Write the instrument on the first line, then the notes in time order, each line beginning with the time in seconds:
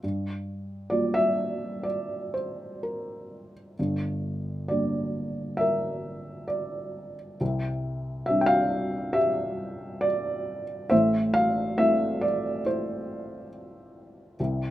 felt piano
0.03 G2
0.90 G3 A#3 F4 D5
1.14 E5
1.83 D5
2.34 C5
2.83 A#4
3.79 G1 G2
4.68 G3 A#3 D4 D5
5.57 A#4 E5
6.48 D5
7.40 C2 C3
8.26 G3 C4 E5
8.30 D4
8.41 G5
8.46 F5
9.13 G4 E5
10.01 D5
10.90 A1 A2 C5 E5
11.34 F5
11.78 A3 C4 E4 E5
12.21 D5
12.65 E4 C5
14.40 C2 C3